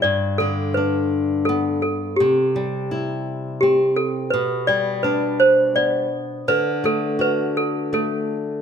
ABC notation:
X:1
M:3/4
L:1/16
Q:1/4=84
K:G
V:1 name="Toy piano"
d2 A2 B4 A2 A2 | G8 G2 A2 | B2 d2 B2 c2 d4 | B2 A2 B2 A2 A3 z |]
V:2 name="Nylon-string guitar"
G,,2 D,2 D4 B,4 | C,2 G,2 E4 C4 | B,,2 G,2 D4 B,4 | D,2 A,2 F4 A,4 |]